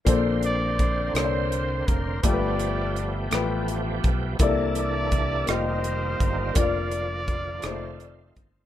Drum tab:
HH |xxxxxx|xxxxxx|xxxxxx|xxxxxx|
SD |---r--|---r--|---r--|---r--|
BD |o-o--o|o----o|o-o--o|o-o--o|